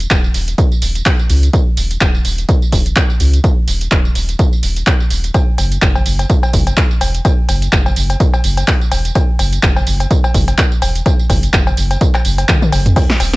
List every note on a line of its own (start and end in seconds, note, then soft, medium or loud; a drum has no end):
0.00 closed hi-hat medium
0.00 tambourine soft
0.11 0.30 D#1 medium
0.11 kick loud
0.11 clap loud
0.11 closed hi-hat medium
0.11 tambourine soft
0.24 tambourine soft
0.34 0.53 D#1 medium
0.34 open hi-hat loud
0.34 tambourine medium
0.48 closed hi-hat medium
0.48 tambourine soft
0.58 kick loud
0.58 closed hi-hat medium
0.58 tambourine soft
0.72 tambourine soft
0.82 1.01 D#1 medium
0.82 open hi-hat loud
0.82 tambourine medium
0.95 closed hi-hat medium
0.95 tambourine soft
1.06 kick loud
1.06 clap loud
1.06 closed hi-hat medium
1.06 tambourine soft
1.19 tambourine soft
1.30 1.49 C#2 loud
1.30 open hi-hat loud
1.30 tambourine medium
1.43 closed hi-hat medium
1.43 tambourine soft
1.53 kick loud
1.53 closed hi-hat soft
1.53 tambourine soft
1.77 1.96 D#1 loud
1.77 open hi-hat loud
1.77 tambourine medium
1.91 closed hi-hat medium
1.91 tambourine soft
2.01 2.20 D#1 medium
2.01 kick loud
2.01 clap loud
2.01 closed hi-hat soft
2.01 tambourine soft
2.15 tambourine soft
2.25 2.44 D#1 medium
2.25 open hi-hat loud
2.25 tambourine medium
2.38 closed hi-hat medium
2.38 tambourine soft
2.49 kick loud
2.49 closed hi-hat medium
2.49 tambourine soft
2.62 tambourine soft
2.72 2.92 D#1 medium
2.72 kick medium
2.72 open hi-hat loud
2.72 tambourine medium
2.86 closed hi-hat medium
2.86 tambourine soft
2.96 kick loud
2.96 clap loud
2.96 closed hi-hat soft
2.96 tambourine soft
3.10 tambourine soft
3.20 3.39 C#2 medium
3.20 open hi-hat loud
3.20 tambourine medium
3.33 closed hi-hat medium
3.33 tambourine soft
3.44 kick loud
3.44 closed hi-hat soft
3.44 tambourine soft
3.68 3.87 D#1 loud
3.68 open hi-hat loud
3.68 tambourine medium
3.81 closed hi-hat medium
3.81 tambourine soft
3.92 4.11 D#1 medium
3.92 kick loud
3.92 clap loud
3.92 closed hi-hat soft
3.92 tambourine soft
4.05 tambourine soft
4.15 4.34 D#1 medium
4.15 open hi-hat loud
4.15 tambourine medium
4.29 closed hi-hat medium
4.29 tambourine soft
4.39 kick loud
4.39 closed hi-hat soft
4.39 tambourine soft
4.53 tambourine soft
4.63 4.82 D#1 loud
4.63 open hi-hat loud
4.63 tambourine medium
4.76 closed hi-hat medium
4.76 tambourine soft
4.87 kick loud
4.87 clap loud
4.87 closed hi-hat soft
4.87 tambourine soft
5.00 tambourine soft
5.10 5.30 D#1 medium
5.10 open hi-hat loud
5.10 tambourine medium
5.24 closed hi-hat medium
5.24 tambourine soft
5.34 kick loud
5.34 closed hi-hat soft
5.34 tambourine soft
5.34 cowbell medium
5.58 5.77 F#1 loud
5.58 open hi-hat loud
5.58 tambourine medium
5.58 cowbell soft
5.72 closed hi-hat medium
5.72 tambourine soft
5.82 6.01 F#1 medium
5.82 kick loud
5.82 clap loud
5.82 closed hi-hat soft
5.82 tambourine soft
5.95 tambourine soft
5.95 cowbell medium
6.06 6.25 F#1 medium
6.06 open hi-hat loud
6.06 tambourine medium
6.19 closed hi-hat medium
6.19 tambourine soft
6.19 cowbell soft
6.30 kick loud
6.30 closed hi-hat soft
6.30 tambourine soft
6.43 tambourine soft
6.43 cowbell medium
6.53 6.73 F#1 medium
6.53 kick medium
6.53 open hi-hat loud
6.53 tambourine medium
6.67 closed hi-hat medium
6.67 tambourine soft
6.67 cowbell soft
6.77 kick loud
6.77 clap loud
6.77 closed hi-hat soft
6.77 tambourine soft
6.91 tambourine soft
7.01 7.20 E1 medium
7.01 open hi-hat loud
7.01 tambourine medium
7.01 cowbell medium
7.15 closed hi-hat medium
7.15 tambourine soft
7.25 kick loud
7.25 closed hi-hat soft
7.25 tambourine soft
7.25 cowbell medium
7.49 7.68 F#1 loud
7.49 open hi-hat loud
7.49 tambourine medium
7.49 cowbell soft
7.62 closed hi-hat medium
7.62 tambourine soft
7.73 7.92 F#1 medium
7.73 kick loud
7.73 clap loud
7.73 closed hi-hat soft
7.73 tambourine soft
7.86 tambourine soft
7.86 cowbell medium
7.96 8.15 F#1 medium
7.96 open hi-hat loud
7.96 tambourine medium
8.10 closed hi-hat medium
8.10 tambourine soft
8.10 cowbell soft
8.20 kick loud
8.20 closed hi-hat medium
8.20 tambourine soft
8.34 tambourine soft
8.34 cowbell medium
8.44 8.63 F#1 medium
8.44 open hi-hat loud
8.44 tambourine medium
8.57 closed hi-hat medium
8.57 tambourine soft
8.57 cowbell soft
8.68 kick loud
8.68 clap loud
8.68 closed hi-hat soft
8.68 tambourine soft
8.81 tambourine soft
8.92 9.11 E1 loud
8.92 open hi-hat loud
8.92 tambourine medium
8.92 cowbell medium
9.05 closed hi-hat medium
9.05 tambourine soft
9.15 kick loud
9.15 closed hi-hat medium
9.15 tambourine soft
9.15 cowbell medium
9.39 9.58 F#1 loud
9.39 open hi-hat loud
9.39 tambourine medium
9.39 cowbell soft
9.53 closed hi-hat medium
9.53 tambourine soft
9.63 9.82 F#1 medium
9.63 kick loud
9.63 clap loud
9.63 closed hi-hat medium
9.63 tambourine soft
9.76 tambourine soft
9.76 cowbell medium
9.87 10.06 F#1 medium
9.87 open hi-hat loud
9.87 tambourine medium
10.00 closed hi-hat medium
10.00 tambourine soft
10.00 cowbell soft
10.11 kick loud
10.11 closed hi-hat medium
10.11 tambourine soft
10.24 tambourine soft
10.24 cowbell medium
10.34 10.53 F#1 medium
10.34 kick medium
10.34 open hi-hat loud
10.34 tambourine medium
10.48 closed hi-hat medium
10.48 tambourine soft
10.48 cowbell soft
10.58 kick loud
10.58 clap loud
10.58 closed hi-hat medium
10.58 tambourine soft
10.72 tambourine soft
10.82 11.01 E1 loud
10.82 open hi-hat loud
10.82 tambourine medium
10.82 cowbell medium
10.95 closed hi-hat medium
10.95 tambourine soft
11.06 kick loud
11.06 closed hi-hat medium
11.06 tambourine soft
11.06 cowbell medium
11.19 tambourine soft
11.30 11.49 F#1 loud
11.30 kick medium
11.30 open hi-hat loud
11.30 tambourine medium
11.30 cowbell soft
11.43 closed hi-hat medium
11.43 tambourine soft
11.53 11.72 F#1 medium
11.53 kick loud
11.53 clap loud
11.53 closed hi-hat medium
11.53 tambourine soft
11.67 tambourine soft
11.67 cowbell medium
11.77 11.96 F#1 medium
11.77 open hi-hat loud
11.77 tambourine medium
11.91 closed hi-hat medium
11.91 tambourine soft
11.91 cowbell soft
12.01 kick loud
12.01 closed hi-hat medium
12.01 tambourine soft
12.14 clap soft
12.14 tambourine soft
12.14 cowbell medium
12.25 12.44 F#1 medium
12.25 open hi-hat loud
12.25 tambourine medium
12.38 closed hi-hat medium
12.38 tambourine soft
12.38 cowbell soft
12.49 kick loud
12.49 clap loud
12.49 closed hi-hat medium
12.49 high tom medium
12.49 tambourine soft
12.62 high tom medium
12.62 tambourine soft
12.72 12.92 F#1 medium
12.72 open hi-hat loud
12.72 tambourine medium
12.72 cowbell medium
12.86 closed hi-hat medium
12.86 mid tom medium
12.86 tambourine soft
12.96 kick loud
12.96 closed hi-hat medium
12.96 crash medium
12.96 tambourine soft
12.96 cowbell medium
13.10 snare medium
13.20 13.36 D#1 loud
13.20 open hi-hat loud
13.20 tambourine medium
13.20 cowbell soft